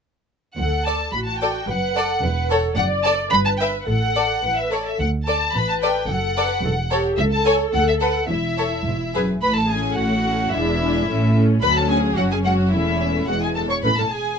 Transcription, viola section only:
0, 0, Header, 1, 2, 480
1, 0, Start_track
1, 0, Key_signature, 2, "major"
1, 0, Tempo, 549451
1, 515, Time_signature, 2, 2, 24, 8
1, 6277, Key_signature, 3, "major"
1, 6753, Tempo, 566038
1, 8193, Tempo, 551978
1, 12507, End_track
2, 0, Start_track
2, 0, Title_t, "Viola section"
2, 0, Program_c, 0, 48
2, 511, Note_on_c, 0, 69, 45
2, 960, Note_off_c, 0, 69, 0
2, 999, Note_on_c, 0, 66, 43
2, 1465, Note_off_c, 0, 66, 0
2, 1472, Note_on_c, 0, 71, 50
2, 1709, Note_on_c, 0, 69, 41
2, 1710, Note_off_c, 0, 71, 0
2, 1944, Note_on_c, 0, 71, 52
2, 1946, Note_off_c, 0, 69, 0
2, 2181, Note_on_c, 0, 69, 47
2, 2182, Note_off_c, 0, 71, 0
2, 2414, Note_on_c, 0, 74, 62
2, 2420, Note_off_c, 0, 69, 0
2, 2888, Note_off_c, 0, 74, 0
2, 2902, Note_on_c, 0, 71, 53
2, 3385, Note_off_c, 0, 71, 0
2, 3385, Note_on_c, 0, 69, 44
2, 3826, Note_off_c, 0, 69, 0
2, 3877, Note_on_c, 0, 71, 46
2, 4105, Note_off_c, 0, 71, 0
2, 4120, Note_on_c, 0, 69, 37
2, 4366, Note_off_c, 0, 69, 0
2, 4850, Note_on_c, 0, 71, 54
2, 5293, Note_off_c, 0, 71, 0
2, 5330, Note_on_c, 0, 69, 47
2, 5565, Note_off_c, 0, 69, 0
2, 5568, Note_on_c, 0, 71, 55
2, 5798, Note_off_c, 0, 71, 0
2, 5807, Note_on_c, 0, 69, 53
2, 5877, Note_off_c, 0, 69, 0
2, 6041, Note_on_c, 0, 67, 50
2, 6274, Note_off_c, 0, 67, 0
2, 6279, Note_on_c, 0, 69, 62
2, 7234, Note_off_c, 0, 69, 0
2, 7239, Note_on_c, 0, 64, 42
2, 7946, Note_off_c, 0, 64, 0
2, 8433, Note_on_c, 0, 61, 37
2, 8434, Note_on_c, 0, 57, 34
2, 8903, Note_off_c, 0, 61, 0
2, 8904, Note_off_c, 0, 57, 0
2, 8913, Note_on_c, 0, 57, 36
2, 8914, Note_on_c, 0, 61, 35
2, 9149, Note_off_c, 0, 57, 0
2, 9150, Note_off_c, 0, 61, 0
2, 9154, Note_on_c, 0, 62, 40
2, 9156, Note_on_c, 0, 56, 41
2, 9387, Note_off_c, 0, 62, 0
2, 9388, Note_off_c, 0, 56, 0
2, 9397, Note_on_c, 0, 62, 44
2, 9398, Note_on_c, 0, 56, 45
2, 9629, Note_off_c, 0, 56, 0
2, 9629, Note_off_c, 0, 62, 0
2, 9631, Note_on_c, 0, 61, 43
2, 9632, Note_on_c, 0, 57, 41
2, 9857, Note_off_c, 0, 61, 0
2, 9859, Note_off_c, 0, 57, 0
2, 9868, Note_on_c, 0, 61, 41
2, 9870, Note_on_c, 0, 57, 41
2, 10098, Note_off_c, 0, 61, 0
2, 10101, Note_off_c, 0, 57, 0
2, 10109, Note_on_c, 0, 61, 51
2, 10110, Note_on_c, 0, 54, 49
2, 10550, Note_off_c, 0, 61, 0
2, 10551, Note_off_c, 0, 54, 0
2, 10585, Note_on_c, 0, 54, 44
2, 10586, Note_on_c, 0, 61, 44
2, 10655, Note_off_c, 0, 54, 0
2, 10826, Note_on_c, 0, 56, 37
2, 10896, Note_off_c, 0, 56, 0
2, 11055, Note_off_c, 0, 61, 0
2, 11064, Note_on_c, 0, 57, 41
2, 11064, Note_on_c, 0, 61, 40
2, 11538, Note_off_c, 0, 57, 0
2, 11538, Note_off_c, 0, 61, 0
2, 11548, Note_on_c, 0, 56, 40
2, 11548, Note_on_c, 0, 59, 39
2, 11857, Note_off_c, 0, 56, 0
2, 11857, Note_off_c, 0, 59, 0
2, 12033, Note_on_c, 0, 57, 47
2, 12035, Note_on_c, 0, 61, 45
2, 12081, Note_off_c, 0, 57, 0
2, 12083, Note_off_c, 0, 61, 0
2, 12159, Note_on_c, 0, 57, 32
2, 12160, Note_on_c, 0, 61, 31
2, 12206, Note_off_c, 0, 57, 0
2, 12207, Note_off_c, 0, 61, 0
2, 12507, End_track
0, 0, End_of_file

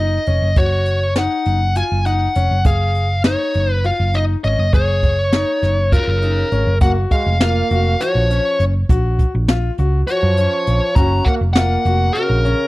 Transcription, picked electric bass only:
0, 0, Header, 1, 2, 480
1, 0, Start_track
1, 0, Key_signature, 6, "major"
1, 0, Tempo, 594059
1, 458, Time_signature, 7, 3, 24, 8
1, 10241, End_track
2, 0, Start_track
2, 0, Title_t, "Picked electric bass"
2, 0, Program_c, 0, 34
2, 0, Note_on_c, 0, 30, 73
2, 138, Note_off_c, 0, 30, 0
2, 222, Note_on_c, 0, 29, 84
2, 314, Note_off_c, 0, 29, 0
2, 341, Note_on_c, 0, 30, 79
2, 434, Note_off_c, 0, 30, 0
2, 456, Note_on_c, 0, 30, 77
2, 1022, Note_off_c, 0, 30, 0
2, 1183, Note_on_c, 0, 30, 84
2, 1464, Note_off_c, 0, 30, 0
2, 1548, Note_on_c, 0, 30, 70
2, 1828, Note_off_c, 0, 30, 0
2, 1908, Note_on_c, 0, 29, 84
2, 2000, Note_off_c, 0, 29, 0
2, 2028, Note_on_c, 0, 30, 85
2, 2121, Note_off_c, 0, 30, 0
2, 2140, Note_on_c, 0, 30, 85
2, 2706, Note_off_c, 0, 30, 0
2, 2871, Note_on_c, 0, 30, 84
2, 3152, Note_off_c, 0, 30, 0
2, 3230, Note_on_c, 0, 30, 80
2, 3511, Note_off_c, 0, 30, 0
2, 3591, Note_on_c, 0, 32, 86
2, 3684, Note_off_c, 0, 32, 0
2, 3707, Note_on_c, 0, 30, 79
2, 3801, Note_off_c, 0, 30, 0
2, 3825, Note_on_c, 0, 30, 83
2, 4390, Note_off_c, 0, 30, 0
2, 4546, Note_on_c, 0, 30, 88
2, 4829, Note_off_c, 0, 30, 0
2, 4907, Note_on_c, 0, 30, 70
2, 5190, Note_off_c, 0, 30, 0
2, 5268, Note_on_c, 0, 32, 78
2, 5362, Note_off_c, 0, 32, 0
2, 5388, Note_on_c, 0, 30, 82
2, 5483, Note_off_c, 0, 30, 0
2, 5507, Note_on_c, 0, 30, 86
2, 5696, Note_off_c, 0, 30, 0
2, 5868, Note_on_c, 0, 29, 77
2, 6150, Note_off_c, 0, 29, 0
2, 6228, Note_on_c, 0, 29, 86
2, 6416, Note_off_c, 0, 29, 0
2, 6587, Note_on_c, 0, 34, 78
2, 6775, Note_off_c, 0, 34, 0
2, 6946, Note_on_c, 0, 30, 86
2, 7135, Note_off_c, 0, 30, 0
2, 7186, Note_on_c, 0, 34, 86
2, 7467, Note_off_c, 0, 34, 0
2, 7551, Note_on_c, 0, 34, 85
2, 7830, Note_off_c, 0, 34, 0
2, 7908, Note_on_c, 0, 37, 83
2, 8094, Note_off_c, 0, 37, 0
2, 8265, Note_on_c, 0, 42, 88
2, 8452, Note_off_c, 0, 42, 0
2, 8626, Note_on_c, 0, 34, 83
2, 8718, Note_off_c, 0, 34, 0
2, 8857, Note_on_c, 0, 30, 94
2, 9046, Note_off_c, 0, 30, 0
2, 9219, Note_on_c, 0, 29, 75
2, 9500, Note_off_c, 0, 29, 0
2, 9577, Note_on_c, 0, 29, 94
2, 9765, Note_off_c, 0, 29, 0
2, 9936, Note_on_c, 0, 34, 77
2, 10124, Note_off_c, 0, 34, 0
2, 10241, End_track
0, 0, End_of_file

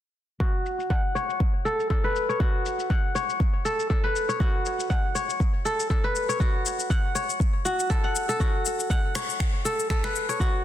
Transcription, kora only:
0, 0, Header, 1, 2, 480
1, 0, Start_track
1, 0, Key_signature, 3, "minor"
1, 0, Tempo, 500000
1, 386, Time_signature, 4, 2, 24, 8
1, 10219, End_track
2, 0, Start_track
2, 0, Title_t, "Kora"
2, 0, Program_c, 0, 46
2, 385, Note_on_c, 0, 66, 68
2, 866, Note_on_c, 0, 78, 70
2, 1105, Note_on_c, 0, 73, 69
2, 1585, Note_on_c, 0, 69, 68
2, 1789, Note_off_c, 0, 66, 0
2, 1792, Note_off_c, 0, 78, 0
2, 1822, Note_off_c, 0, 69, 0
2, 1826, Note_on_c, 0, 69, 76
2, 1959, Note_on_c, 0, 71, 92
2, 2196, Note_off_c, 0, 73, 0
2, 2200, Note_on_c, 0, 73, 69
2, 2303, Note_on_c, 0, 66, 71
2, 2785, Note_on_c, 0, 78, 73
2, 3021, Note_off_c, 0, 73, 0
2, 3025, Note_on_c, 0, 73, 71
2, 3091, Note_off_c, 0, 69, 0
2, 3139, Note_off_c, 0, 71, 0
2, 3505, Note_on_c, 0, 69, 69
2, 3706, Note_off_c, 0, 66, 0
2, 3711, Note_off_c, 0, 78, 0
2, 3739, Note_off_c, 0, 69, 0
2, 3743, Note_on_c, 0, 69, 74
2, 3875, Note_on_c, 0, 71, 88
2, 4113, Note_off_c, 0, 73, 0
2, 4117, Note_on_c, 0, 73, 68
2, 4224, Note_on_c, 0, 66, 70
2, 4704, Note_on_c, 0, 78, 70
2, 4941, Note_off_c, 0, 73, 0
2, 4945, Note_on_c, 0, 73, 72
2, 5008, Note_off_c, 0, 69, 0
2, 5056, Note_off_c, 0, 71, 0
2, 5426, Note_on_c, 0, 69, 68
2, 5628, Note_off_c, 0, 66, 0
2, 5630, Note_off_c, 0, 78, 0
2, 5662, Note_off_c, 0, 69, 0
2, 5665, Note_on_c, 0, 69, 76
2, 5799, Note_on_c, 0, 71, 87
2, 6035, Note_off_c, 0, 73, 0
2, 6039, Note_on_c, 0, 73, 69
2, 6145, Note_on_c, 0, 66, 71
2, 6626, Note_on_c, 0, 78, 74
2, 6861, Note_off_c, 0, 73, 0
2, 6865, Note_on_c, 0, 73, 72
2, 6930, Note_off_c, 0, 69, 0
2, 6979, Note_off_c, 0, 71, 0
2, 7341, Note_off_c, 0, 66, 0
2, 7345, Note_on_c, 0, 66, 69
2, 7552, Note_off_c, 0, 78, 0
2, 7584, Note_on_c, 0, 69, 91
2, 7717, Note_on_c, 0, 78, 70
2, 7954, Note_off_c, 0, 69, 0
2, 7958, Note_on_c, 0, 69, 72
2, 7966, Note_off_c, 0, 73, 0
2, 8063, Note_off_c, 0, 66, 0
2, 8067, Note_on_c, 0, 66, 71
2, 8543, Note_off_c, 0, 78, 0
2, 8546, Note_on_c, 0, 78, 76
2, 8787, Note_on_c, 0, 73, 71
2, 9223, Note_off_c, 0, 69, 0
2, 9266, Note_on_c, 0, 69, 67
2, 9470, Note_off_c, 0, 66, 0
2, 9473, Note_off_c, 0, 78, 0
2, 9504, Note_off_c, 0, 69, 0
2, 9508, Note_on_c, 0, 69, 74
2, 9640, Note_on_c, 0, 71, 89
2, 9875, Note_off_c, 0, 73, 0
2, 9878, Note_on_c, 0, 73, 70
2, 9986, Note_on_c, 0, 66, 71
2, 10219, Note_off_c, 0, 66, 0
2, 10219, Note_off_c, 0, 69, 0
2, 10219, Note_off_c, 0, 71, 0
2, 10219, Note_off_c, 0, 73, 0
2, 10219, End_track
0, 0, End_of_file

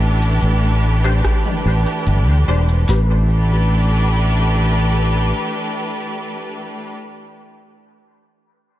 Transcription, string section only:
0, 0, Header, 1, 2, 480
1, 0, Start_track
1, 0, Key_signature, 0, "minor"
1, 0, Tempo, 821918
1, 1688, Time_signature, 4, 2, 24, 8
1, 5139, End_track
2, 0, Start_track
2, 0, Title_t, "String section"
2, 0, Program_c, 0, 48
2, 0, Note_on_c, 0, 52, 75
2, 0, Note_on_c, 0, 57, 67
2, 0, Note_on_c, 0, 62, 91
2, 0, Note_on_c, 0, 67, 76
2, 0, Note_on_c, 0, 71, 73
2, 1679, Note_off_c, 0, 52, 0
2, 1686, Note_on_c, 0, 52, 77
2, 1687, Note_off_c, 0, 57, 0
2, 1687, Note_off_c, 0, 62, 0
2, 1688, Note_off_c, 0, 67, 0
2, 1688, Note_off_c, 0, 71, 0
2, 1758, Note_on_c, 0, 57, 77
2, 1835, Note_on_c, 0, 62, 74
2, 1905, Note_on_c, 0, 67, 72
2, 1974, Note_on_c, 0, 71, 74
2, 4050, Note_off_c, 0, 57, 0
2, 4050, Note_off_c, 0, 71, 0
2, 4051, Note_off_c, 0, 52, 0
2, 4052, Note_off_c, 0, 62, 0
2, 4052, Note_off_c, 0, 67, 0
2, 5139, End_track
0, 0, End_of_file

